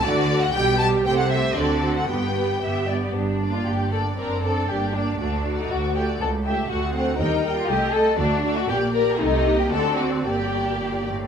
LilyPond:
<<
  \new Staff \with { instrumentName = "Violin section" } { \time 2/4 \key g \major \tempo 4 = 118 d''8. fis''16 g''8 a''8 | g''16 fis''16 e''8 d''8. fis''16 | g''4. r8 | \key g \minor r8 d''4 d''8 |
d''8 d''8 d''8 d''8 | d''8 d''4 d''8 | r8 e''8 fis''8 fis''8 | g''8 g''8 ees''8 ees''8 |
d''8 d''8 d''8 d''8 | ees''4 d''4 | d''4. r8 | }
  \new Staff \with { instrumentName = "Violin section" } { \time 2/4 \key g \major fis'4 g'4 | c''4 a'4 | b'4 e''8 d''8 | \key g \minor d'8. f'16 g'8 a'8 |
bes'8 a'8 g'8 d'8 | d'8. ees'16 fis'8 g'8 | a'8 g'8 fis'8 c'8 | ees'8. f'16 g'8 a'8 |
d'8. fis'16 g'8 bes'8 | ees'8. g'16 a'8 fis'8 | g'4. r8 | }
  \new Staff \with { instrumentName = "Viola section" } { \time 2/4 \key g \major << { fis'8 fis'8 g'8 g'8 | g'8 g'8 fis'8 fis'8 | g'8 g'8 g'8 g'8 | \key g \minor r8 d'4 d'8 |
d'8 d'8 d'8 d'8 | fis'8 fis'4 fis'8 | r8 g'8 fis'8 fis'8 | bes'8 bes'8 a'8 a'8 |
fis'8 fis'8 g'8 g'8 | g'4 fis'4 | g'4. r8 | } \\ { a8 a8 g8 g8 | a8 a8 c'8 c'8 | b8 b8 b8 b8 | r8 bes4 bes8 |
c'8 c'8 bes8 bes8 | a8 a4 a8 | r8 a8 a8 a8 | g8 g8 a8 a8 |
a8 a8 bes8 bes8 | a8 bes8 c'4 | bes4. r8 | } >> }
  \new Staff \with { instrumentName = "Cello section" } { \clef bass \time 2/4 \key g \major d4 b,4 | c4 d4 | g,4 g,4 | \key g \minor g,4 g,4 |
fis,4 g,4 | d,4 d,4 | cis,4 d,4 | ees,4 c,4 |
d,4 bes,4 | c4 d4 | g,4 bes,8 a,8 | }
  \new Staff \with { instrumentName = "Double bass section" } { \clef bass \time 2/4 \key g \major d,4 b,,4 | c,4 d,4 | g,,4 g,,4 | \key g \minor g,,4 g,,4 |
fis,,4 g,,4 | d,4 d,4 | cis,4 d,4 | ees,4 c,4 |
d,4 bes,,4 | c,4 d,4 | g,,4. r8 | }
>>